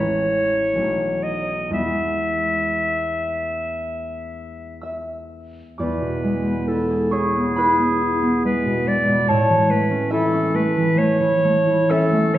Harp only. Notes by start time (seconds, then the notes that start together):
Already playing: A1 A3 C#4 E4
0.76 B1 A3 C#4 D#4
1.70 E2 G#3 B3 E4
4.81 E5 E6
5.78 E2 D5 D6
6.01 B2
6.24 G#3
6.44 B3
6.68 E4
6.90 G#4
7.11 E4 C#5 C#6
7.36 B3
7.56 E4 B4 B5
7.79 B3
8.01 E4
8.22 B3
8.45 G#3
8.66 B2
8.87 G#3
9.08 B2
9.28 A2 A4 A5
9.49 E3
9.69 A3
9.91 C#4
10.11 E4 E5
10.33 C#4
10.54 A3
10.77 E3
10.98 A3
11.20 E3
11.44 A3
11.67 E4
11.89 C#4 E5 E6
12.13 A3
12.34 E3